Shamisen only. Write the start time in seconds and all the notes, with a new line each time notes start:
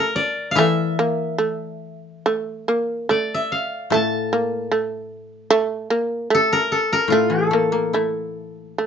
Already playing: A3
0.59 A3
0.99 A#3
1.38 A3
2.26 A3
2.68 A#3
3.09 A3
3.92 A3
4.33 A#3
4.72 A3
5.50 A3
5.90 A#3
6.30 A3
7.12 A3
7.53 A#3
7.94 A3
8.78 A3